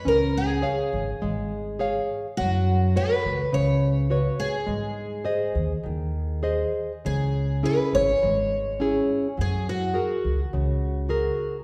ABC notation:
X:1
M:4/4
L:1/8
Q:1/4=104
K:C#dor
V:1 name="Nylon-string guitar"
C2 [Gc^e]2 G,2 [Gce]2 | F,2 [FBc]2 C,2 [FBc]2 | G,2 [G^Bd]2 D,2 [GBd]2 | C,2 [CEG]2 G,2 [CEG]2 |
F,2 [FGA]2 C,2 [FGA]2 |]
V:2 name="Twelve-string acoustic guitar"
A G6 z | F2 B2 c3 G- | G6- G z | G2 B c4- c |
G F6 z |]
V:3 name="Upright bass" clef=bass
C,,3 G,,, G,,,4 | F,,3 C,, C,,4 | G,,3 D,, D,,4 | C,,3 G,,, G,,,4 |
F,,3 C,, C,,4 |]